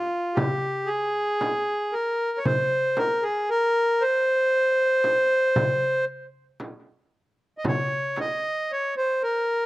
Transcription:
Already playing: F4
0.35 G4, frame drum, darbuka dum
0.86 G#4
1.41 darbuka tek, frame drum
1.93 A#4
2.38 C#5
2.45 C5, darbuka dum, frame drum
2.97 A#4, darbuka tek, frame drum
3.23 G#4
3.50 A#4
4.01 C5
5.04 darbuka tek, frame drum
5.56 frame drum, darbuka dum
6.60 darbuka tek, frame drum
7.58 D#5
7.64 C#5, darbuka dum, frame drum
8.16 D#5, darbuka tek, frame drum
8.72 C#5
8.97 C5
9.23 A#4

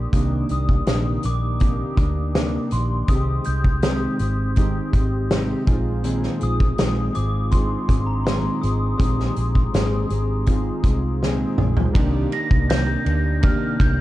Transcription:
Already playing: A#3 D4 F4 G4
0.12 C2 C3 D#3 A#3 D4 D#4 G4, kick, closed hi-hat
0.49 C2 A#3 D4 D#6, closed hi-hat
0.53 D#3
0.69 kick
0.85 A#1 C3 D#3 A#3 D4, snare, closed hi-hat
1.23 A#1 A#3 D4 D6, closed hi-hat
1.27 D#3
1.60 C3 D#3 A#3 D4 D#4 G4, kick, closed hi-hat
1.97 D2 A#3 D4, kick, closed hi-hat
2.35 C3 A#3 D4, snare, closed hi-hat
2.71 A#1 A#3 D4 C6, closed hi-hat
2.75 D#3
3.08 C2 C3 D#3 G#3 C4 D#4 G4 D#6, kick, closed hi-hat
3.44 C2 C4 G4 G6, closed hi-hat
3.49 G#3
3.64 kick
3.82 C3 D#3 G#3 C4 G4, snare, closed hi-hat
4.19 G#1 G#3 C4 G4, closed hi-hat
4.56 D#3 G#3 C4 D#4 G4, kick, closed hi-hat
4.60 G4
4.93 G#1 G#3 C4 G4, kick, closed hi-hat
5.31 C3 D#3 G#3 C4 G4, snare, closed hi-hat
5.67 A#1 G#3 C4 D#4 F4 G#4, kick, closed hi-hat
6.03 A#2 D#3 G#3 C4 G#4, closed hi-hat
6.23 snare
6.40 A#1 G#3 C4 G#4 D#6, closed hi-hat
6.60 kick
6.77 A#1 A#2 D#3 G#3 C4 G#4, snare, closed hi-hat
7.13 G#1 G#3 C4 G#4 D6, closed hi-hat
7.51 D#3 G#3 C4 D4 F4 G#4 C6, kick, closed hi-hat
7.59 D#4
7.88 G#1 G#3 C4 G#4, kick, closed hi-hat
8.06 A#5
8.24 A#2 D#3 G#3 C4 G#4 C6, snare, closed hi-hat
8.61 G#1 G#3 C4 G#4 D#6, closed hi-hat
8.97 A#1 A#2 D#3 G#3 C4 D#4 G4 G#4 D#6, kick, closed hi-hat
9.20 snare
9.36 A#1 G#3 C4 G#4, closed hi-hat
9.55 kick
9.72 G#1 A#2 D#3 G#3 C4 G#4, snare, closed hi-hat
10.09 G#1 G#3 C4 G#4, closed hi-hat
10.46 D#3 G#3 C4 D#4 F4, kick, closed hi-hat
10.50 G#4
10.84 C2 G#3 C4 G#4, kick, closed hi-hat
11.23 A#2 D#3 G#3 C4 G#4, snare
11.58 A#1 G#3 C4 G#4, mid tom
11.77 floor tom
11.93 C2 C3 D#3 A#3 D4 D#4 G4, kick, ride
12.32 D#3 A#3 D4 A#6, ride
12.51 C2, kick
12.68 C3 D#3 A#3 D4 G6, snare, ride
13.05 D2 A#3 D4, ride
13.40 C3 D#3 A#3 D4 D#4 G4, kick, ride
13.44 F6
13.79 C2 D#3 A#3 D4 G6, kick, ride

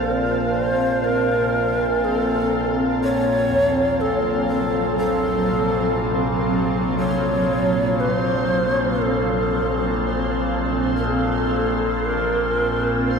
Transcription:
Already playing: A#1 A#2 C4 F5 A5 C6
0.03 A#4
0.55 C5
1.04 A#4
2.04 G#4
2.15 A4
3.01 F#3 C#5
3.50 D#2
4.01 A4
4.48 A4
4.98 A4
5.51 C3
6.99 C#5
8.00 B4
8.16 C5
9.01 A4
10.97 A#4
11.05 A4
12.05 A#4
13.09 C5

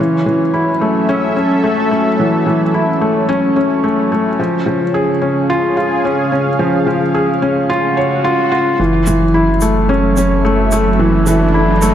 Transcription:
Already playing: C#4
0.00 E3 F#3
0.26 E3
0.37 E5
0.54 E4
0.80 A3 A4
1.09 C#4
1.36 C#4
1.64 A3
1.91 A3
2.19 E3
2.46 E3
2.74 E4
3.01 A3
3.29 C#4
3.56 C#4
3.84 A3
4.12 A3
4.39 C#3 F3
4.66 F3
4.94 G#4
5.09 F5
5.22 C#4 G#4
5.50 F4
5.77 F4
6.05 C#4
6.32 C#4
6.59 F3
6.87 F3
7.15 G#4
7.42 C#4
7.69 F4, swell
7.97 C#5
8.24 F4
8.52 F4
8.79 F#1 E3 F#3, riser
9.07 E3, shaker
9.34 E4
9.47 A4
9.61 A3, shaker
9.82 E5
9.89 C#4
10.17 C#4, shaker
10.45 A3
10.72 A3, shaker
10.99 E3
11.27 E3, shaker
11.54 E4
11.82 A3, shaker

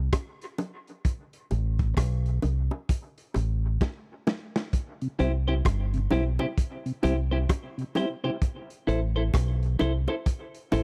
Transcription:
0.13 kick, cross-stick, closed hi-hat, high bongo
0.41 closed hi-hat
0.58 closed hi-hat, low bongo
0.87 closed hi-hat
1.05 kick, closed hi-hat
1.33 closed hi-hat
1.51 A1, closed hi-hat, high bongo
1.79 kick, closed hi-hat
1.97 B1, kick, cross-stick, closed hi-hat, high bongo
2.26 closed hi-hat
2.42 C2, closed hi-hat, low bongo
2.71 high bongo
2.89 kick, closed hi-hat
3.18 closed hi-hat
3.34 A1, closed hi-hat, high bongo
3.81 kick, snare, high bongo
4.27 snare, low bongo
4.56 snare
4.73 kick, closed hi-hat
5.01 C3, closed hi-hat
5.19 C2 G3 C4 E4 G4 C5, closed hi-hat
5.48 C3 E4 G4 C5
5.65 G1, kick, cross-stick, closed hi-hat, high bongo
5.94 C3, closed hi-hat
6.11 B1 G3 C4 E4 G4 C5, closed hi-hat, low bongo
6.39 C3 E4 G4 C5, high bongo
6.58 kick, closed hi-hat
6.86 C3, closed hi-hat
7.03 C2 G3 C4 E4 G4 C5, closed hi-hat, high bongo
7.31 C3 E4 G4 C5
7.49 kick, cross-stick, closed hi-hat, high bongo
7.78 C3, closed hi-hat
7.95 G3 C4 E4 G4 C5, closed hi-hat, low bongo
8.24 C3 E4 G4 C5
8.42 kick, closed hi-hat
8.70 closed hi-hat
8.87 A1 E4 A4 C5, closed hi-hat
9.16 E4 A4 C5
9.34 B1, kick, cross-stick, closed hi-hat, high bongo
9.63 closed hi-hat
9.79 C2 E4 A4 C5, closed hi-hat, low bongo
10.08 E4 A4 C5, high bongo
10.26 kick, closed hi-hat
10.54 closed hi-hat
10.72 A1 E4 A4 C5, closed hi-hat, high bongo

